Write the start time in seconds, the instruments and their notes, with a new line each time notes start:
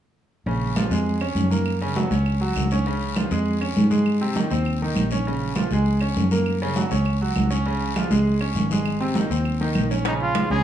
0.46 fingered electric bass A#1, grand piano C#3 C#4, high conga, long guiro
0.62 high conga
0.76 grand piano F3 F4, high conga, short guiro, claves
0.90 fingered electric bass F2, grand piano G#3 G#4, high conga, short guiro
1.06 high conga, long guiro
1.21 grand piano C#4 C#5, high conga, claves
1.35 fingered electric bass F#2, high conga, short guiro
1.51 grand piano A#3 A#4, high conga, short guiro
1.66 high conga, long guiro, claves
1.81 grand piano C#3 C#4, high conga
1.95 grand piano F#3 F#4, high conga, short guiro
2.11 fingered electric bass C#2, grand piano C#4 C#5, high conga, short guiro
2.26 high conga, long guiro, claves
2.41 grand piano F#3 F#4, high conga
2.56 fingered electric bass C#2, high conga, short guiro, claves
2.71 grand piano C#4 C#5, high conga, short guiro
2.86 grand piano C#3 C#4, high conga, long guiro
3.01 high conga
3.16 grand piano F3 F4, high conga, short guiro, claves
3.31 fingered electric bass F2, grand piano G#3 G#4, high conga, short guiro
3.46 high conga, long guiro
3.61 grand piano C#4 C#5, high conga, claves
3.76 fingered electric bass G#2, high conga, short guiro
3.90 grand piano G#3 G#4, high conga, short guiro
4.06 high conga, long guiro, claves
4.21 grand piano C3 C4, high conga
4.36 grand piano D#3 D#4, high conga, short guiro
4.51 fingered electric bass D#2, grand piano C4 C5, high conga, short guiro
4.65 high conga, long guiro, claves
4.81 grand piano D#3 D#4, high conga
4.95 fingered electric bass A#1, high conga, short guiro, claves
5.11 grand piano C#4 C#5, high conga, short guiro
5.25 grand piano C#3 C#4, high conga, long guiro
5.41 high conga
5.56 grand piano F3 F4, high conga, short guiro, claves
5.71 fingered electric bass C#2, grand piano G#3 G#4, high conga, short guiro
5.86 high conga, long guiro
6.01 grand piano C#4 C#5, high conga, claves
6.16 fingered electric bass F#2, high conga, short guiro
6.31 grand piano A#3 A#4, high conga, short guiro
6.46 high conga, long guiro, claves
6.61 grand piano C#3 C#4, high conga
6.76 grand piano F#3 F#4, high conga, short guiro
6.91 fingered electric bass C#2, grand piano C#4 C#5, high conga, short guiro
7.05 high conga, long guiro, claves
7.21 grand piano F#3 F#4, high conga
7.35 fingered electric bass C#2, high conga, short guiro, claves
7.50 grand piano C#4 C#5, short guiro
7.66 grand piano C#3 C#4, high conga, long guiro
7.82 high conga
7.96 grand piano F3 F4, high conga, short guiro, claves
8.10 fingered electric bass C#2, grand piano G#3 G#4, high conga, short guiro
8.26 high conga, long guiro
8.41 grand piano C#4 C#5, high conga, claves
8.55 fingered electric bass G#1, high conga, short guiro
8.70 grand piano G#3 G#4, high conga, short guiro
8.86 high conga, long guiro, claves
9.00 grand piano C3 C4, high conga
9.15 grand piano D#3 D#4, high conga, short guiro
9.30 fingered electric bass D#2, grand piano C4 C5, high conga, short guiro
9.45 high conga, long guiro, claves
9.60 grand piano D#3 D#4, high conga
9.75 fingered electric bass A#1, high conga, short guiro, claves
9.90 grand piano C#4 C#5, high conga, short guiro
10.05 grand piano C#3 C#4 C#5, trumpet D#4, high bongo, high conga, high timbale
10.20 trumpet F4, high bongo, high conga
10.35 grand piano F3 F4 G#4, high bongo, high conga, high timbale, low timbale, claves
10.50 fingered electric bass C#2, grand piano C#3 C#4 C#5, trumpet G#4, high bongo, high conga